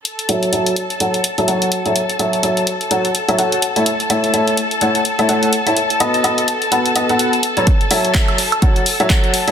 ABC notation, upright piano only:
X:1
M:4/4
L:1/16
Q:"Swing 16ths" 1/4=126
K:F#m
V:1 name="Upright piano"
z2 [F,FAce]2 [F,FAce]2 z2 [F,FAcf] z2 [F,FAce] [F,FAcf]2 z [F,FAce] | z2 [F,FAce]2 [F,FAce]2 z2 [F,FAcf] z2 [F,FAce] [FAcf]2 z [A,EAce] | z2 [A,EAce]2 [A,EAce]2 z2 [A,EAcf] z2 [A,EAce] [A,EAcf]2 z [EAce] | z2 [B,FAB^d]2 [B,FABd]2 z2 [B,FABf] z [B,FABd] [B,FABf]2 z2 [F,FABc] |
z2 [F,FAce]2 [F,Ae]2 z2 [F,FAcf] z2 [F,FAce] z3 [F,FAce] |]